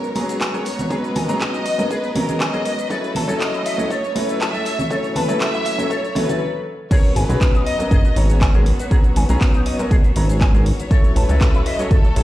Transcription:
Already playing: G#3 B3 F#4 A#4 C#5 A#5
0.03 B4, closed hi-hat, tambourine, cabasa
0.15 F#3 B3 C#4 G#4 A#5, open hi-hat, tambourine, high conga
0.29 G#4, closed hi-hat, tambourine, cabasa
0.41 C#5 G#5, kick, clap, closed hi-hat, tambourine, cabasa
0.54 F#3 B3 C#4 G#4 A#4, closed hi-hat, tambourine, cabasa
0.65 open hi-hat, tambourine
0.79 B4, closed hi-hat, tambourine, low conga, cabasa
0.90 F#3 B3 C#4 G#4 B4 D#5 A#5, kick, closed hi-hat, tambourine, cabasa
1.04 closed hi-hat, tambourine, cabasa
1.15 A#4 G#5, open hi-hat, tambourine, high conga, low conga
1.28 F#3 B3 C#4 G#4 A#5, closed hi-hat, tambourine, high conga, cabasa
1.41 D#5, kick, clap, closed hi-hat, tambourine, cabasa
1.54 D#4, closed hi-hat, tambourine, cabasa
1.66 D#5, open hi-hat, tambourine
1.78 F#3 B3 C#4 A#4, closed hi-hat, tambourine, high conga, cabasa
1.91 G#4 B4, kick, closed hi-hat, tambourine, cabasa
2.04 B4, closed hi-hat, tambourine, cabasa
2.15 F#3 B3 C#4 A#4 A#5, open hi-hat, tambourine, high conga, low conga
2.29 G#4, closed hi-hat, tambourine, low conga, cabasa
2.40 D#5 G#5, kick, clap, closed hi-hat, tambourine, cabasa
2.53 F#3 B3 C#4 G#4 A#4, closed hi-hat, tambourine, cabasa
2.65 open hi-hat, tambourine
2.79 B4, closed hi-hat, tambourine, cabasa
2.90 F#3 A3 C#4 E4 A4 B4 C#5, kick, closed hi-hat, tambourine, cabasa
3.03 closed hi-hat, tambourine, cabasa
3.15 A4 A5, open hi-hat, tambourine, high conga, low conga
3.28 F#3 C#4 E4 A4, closed hi-hat, tambourine, cabasa
3.40 D#5, kick, clap, closed hi-hat, tambourine, cabasa
3.53 E4, closed hi-hat, tambourine, cabasa
3.66 E5, open hi-hat, tambourine
3.78 F#3 C#4 E4 A4, closed hi-hat, tambourine, high conga, cabasa
3.90 A4 C#5, kick, closed hi-hat, tambourine, cabasa
4.04 C#5, closed hi-hat, tambourine, cabasa
4.15 F#3 C#4 E4 A4 B4, open hi-hat, tambourine, high conga
4.29 A4, closed hi-hat, tambourine, cabasa
4.39 E5 A5, kick, clap, closed hi-hat, tambourine, cabasa
4.53 F#3 C#4 E4 A4, closed hi-hat, tambourine, cabasa
4.65 open hi-hat, tambourine
4.78 C#5, closed hi-hat, tambourine, low conga, cabasa
4.90 F#3 C#4 E4 A4 C#5, kick, closed hi-hat, tambourine, cabasa
5.03 closed hi-hat, tambourine, cabasa
5.15 B4 A5, open hi-hat, tambourine, high conga, low conga
5.28 F#3 C#4 E4 A4, closed hi-hat, tambourine, high conga, cabasa
5.40 E5, kick, clap, closed hi-hat, tambourine, cabasa
5.54 E4, closed hi-hat, tambourine, cabasa
5.65 E5, open hi-hat, tambourine
5.78 F#3 C#4 E4 A4, closed hi-hat, tambourine, high conga, cabasa
5.91 A4 C#5, kick, closed hi-hat, tambourine, cabasa
6.04 C#5, closed hi-hat, tambourine, cabasa
6.15 F#3 C#4 E4 A4 B4, open hi-hat, tambourine, high conga, low conga
6.29 A4, closed hi-hat, tambourine, low conga, cabasa
6.91 F#3 B3 C#4 F#4 G#4 A#4 C#5 A#5, kick, closed hi-hat, crash, cabasa
7.04 closed hi-hat, cabasa
7.16 G#1 B4 G#5, open hi-hat
7.29 B1 F#3 B3 C#4 G#4 B4, closed hi-hat, cabasa
7.41 kick, clap, closed hi-hat, cabasa
7.55 D#4, closed hi-hat, cabasa
7.65 D#5, open hi-hat
7.79 F#3 B3 C#4 A#4, closed hi-hat, cabasa
7.91 F#1 G#4 D#5, kick, closed hi-hat, cabasa
8.05 B4, closed hi-hat, cabasa
8.16 G#1 F#3 B3 C#4 C#5 A#5, open hi-hat
8.30 G#4, closed hi-hat, cabasa
8.41 G#5, kick, clap, closed hi-hat, cabasa
8.54 F#3 B3 C#4 G#4 A#4, closed hi-hat, cabasa
8.66 open hi-hat
8.79 B4, closed hi-hat, cabasa
8.91 F#3 B3 C#4 G#4 A#5, kick, closed hi-hat, cabasa
9.04 closed hi-hat, cabasa
9.16 G#1 G#5, open hi-hat
9.29 B1 F#3 B3 C#4 G#4 A#5, closed hi-hat, cabasa
9.41 kick, clap, closed hi-hat, cabasa
9.54 D#4, closed hi-hat, cabasa
9.66 D#5, open hi-hat
9.79 F#3 B3 C#4 A#4, closed hi-hat, cabasa
9.91 F#1 G#4, kick, closed hi-hat, cabasa
10.04 B4, closed hi-hat, cabasa
10.16 G#1 F#3 B3 C#4 A#5, open hi-hat
10.29 G#4, closed hi-hat, cabasa
10.41 G#5, kick, clap, closed hi-hat, cabasa
10.54 F#3 B3 C#4 G#4 A#4, closed hi-hat, cabasa
10.66 open hi-hat
10.80 B4, closed hi-hat, cabasa
10.91 F#3 A3 C#4 E4 F#4 A4 C#5, kick, closed hi-hat, cabasa
11.04 closed hi-hat, cabasa
11.16 A1 B4 A5, open hi-hat
11.29 C#2 F#3 C#4 E4 A4, closed hi-hat, cabasa
11.41 kick, clap, closed hi-hat, cabasa
11.54 E4, closed hi-hat, cabasa
11.66 D#5 E5, open hi-hat
11.79 F#3 C#4 E4 A4 C#5, closed hi-hat, cabasa
11.91 F#1 A4, kick, closed hi-hat, cabasa
12.04 C#5, closed hi-hat, cabasa
12.16 A1 F#3 C#4 E4 A4, open hi-hat

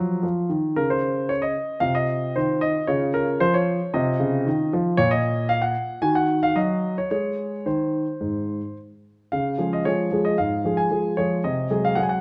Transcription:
Already playing: F3 F#3 F5
0.23 F3
0.49 D#3
0.76 C#3 A#4
0.90 C5
1.29 C#5
1.42 D#5
1.80 C3 F4 F5
1.95 D#5
2.36 D#3 C5
2.61 D#5
2.87 C#3 F4 C#5
3.14 A#4
3.40 F3 C5
3.54 C#5
3.94 C3 F4 D#5
4.20 C#3
4.46 D#3
4.73 F3
4.97 A#2 F4 C#5
5.11 D#5
5.49 F5
5.62 F#5
6.02 D#3 F#4 G#5
6.15 F#5
6.43 F5
6.56 F#3 D#5
6.98 C#5
7.11 G#3 G#4 C#5
7.66 D#3 C5
8.21 G#2
9.32 C#3 F5
9.58 F3 G#3 G#4
9.73 D#5
9.85 F3 G#3 G#4 C#5
10.12 F3 G#3 G#4
10.25 D#5
10.38 G#2 F5
10.64 F3 G#3 G#4
10.77 G#5
10.91 F3 G#3 G#4
11.17 F3 G#3 G#4 C#5
11.44 C3 D#5
11.70 F#3 G#3 G#4
11.85 F5
11.95 F#3 G#3 G#4 F#5
12.03 G#5
12.09 F#5

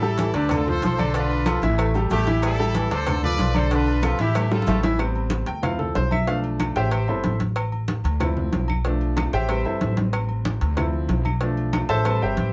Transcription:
Already playing: A1 E4 A4
0.02 G3 G4 A4, high conga, low agogo, maracas
0.18 E3, cowbell, high conga, maracas
0.34 D2 D3 D4 G4 B4 D5, cowbell, high conga, low agogo, maracas
0.49 D3 F4, cowbell, high conga, low conga, low agogo, claves, maracas
0.53 A4
0.67 F3 F4 A4 C5, high conga, low conga, maracas
0.82 B1 F3 A4 C5, cowbell, high conga, low timbale, low agogo, maracas
0.98 D3 D4 D5, high conga, low agogo, claves, maracas
1.14 D3 D4 F4 B4 D5, cowbell, high conga, maracas
1.30 high conga, low agogo, maracas
1.46 F3 F4 A4, cowbell, high conga, low agogo, claves, maracas
1.62 A1 E3 E4 E5, cowbell, high conga, maracas
1.78 A3, cowbell, high conga, low agogo, claves, maracas
1.94 G3 G4 A4, high conga, low agogo, maracas
2.10 A1 G3 A3 E4 G4 A4, cowbell, high conga, maracas
2.26 E3 E4 E5, cowbell, high conga, maracas
2.42 G3 E4 A4, cowbell, high conga, low agogo, claves, maracas
2.58 G3 G4 A4, high conga, low agogo, maracas
2.74 E3, cowbell, high conga, maracas
2.91 D2 D3 D4 A4 C5 D5, cowbell, high conga, low agogo, maracas
3.06 D3, cowbell, high conga, low conga, low agogo, claves, maracas
3.23 F3 F4 A4 B4 D5, high conga, low conga, maracas
3.38 B1 F3, cowbell, high conga, low timbale, low agogo, maracas
3.54 D3 D4 A4 C5 D5, high conga, low agogo, claves, maracas
3.70 D3 D4 F4 B4 D5, cowbell, high conga, maracas
3.87 high conga, low agogo, maracas
4.03 F3 F4 A4 B4, cowbell, high conga, high timbale, low agogo, claves, maracas
4.19 A1 E3 E4 G4 E5, cowbell, high conga, high timbale, maracas
4.35 A3, cowbell, high conga, low timbale, low agogo, claves, maracas
4.51 G3 F4 G4 A4, high bongo, high conga, low timbale, low agogo, maracas
4.62 low bongo
4.67 A1 G3 A3 G4 A4, cowbell, high conga, low timbale, maracas
4.73 low bongo
4.83 E3 E4 E5, cowbell, low bongo, high conga, low timbale, maracas
4.98 G3 B3 C4, cowbell, high conga, low agogo, claves
5.15 high conga, low agogo
5.30 cowbell, high conga
5.46 D2 G5, cowbell, high conga, low agogo
5.62 F3 C4 E4 F5, cowbell, high conga, low conga, low agogo, claves
5.79 A4, high conga, low conga
5.95 B1 C5, cowbell, high conga, low timbale, low agogo
6.11 E5, high conga, low agogo, claves
6.27 F3 A3 D4 F5, cowbell, high conga
6.44 high conga, low agogo
6.60 cowbell, high conga, low agogo, claves
6.76 A1 G4 C5 E5 G5, cowbell
6.91 cowbell, high conga, low agogo, claves
7.08 G1 G3 B3 C4 E4 A4 C5 E5, high conga, low agogo
7.24 A1, cowbell, high conga
7.40 cowbell, high conga
7.56 cowbell, high conga, low agogo, claves
7.72 high conga, low agogo
7.88 cowbell, high conga
8.04 D2, cowbell, high conga, low agogo
8.20 F3 C4 E4, cowbell, high conga, low conga, low agogo, claves
8.37 high conga, low conga
8.52 B1, cowbell, high conga, low timbale, low agogo
8.68 high conga, low agogo, claves
8.85 F3 A3 D4, cowbell, high conga
9.01 high conga, low agogo
9.17 cowbell, high conga, high timbale, low agogo, claves
9.33 A1 G4 C5 E5 G5, cowbell
9.49 G3 C4 B4, cowbell, high conga, low agogo, claves
9.65 G1 E4 A4 C5 E5, high conga, low agogo
9.81 A1, cowbell, high conga, low timbale
9.97 cowbell, high conga, low timbale
10.13 cowbell, high conga, low agogo, claves
10.29 high conga, low agogo
10.45 cowbell, high conga
10.61 D2, cowbell, high conga, low agogo
10.76 F3 C4 E4, cowbell, high conga, low conga, low agogo, claves
10.93 high conga
11.08 B1, cowbell, high conga, low timbale, low agogo
11.25 high conga, low agogo, claves
11.41 F3 A3 D4, cowbell, high conga
11.57 high conga, low agogo
11.73 cowbell, high conga, low agogo, claves
11.89 A1 A4 C5 E5 A5, cowbell, high conga
12.05 G3 C4 B4, cowbell, high conga, low agogo, claves
12.21 G1 G4 C5 E5 G5, high conga, low agogo
12.37 A1, cowbell, high conga

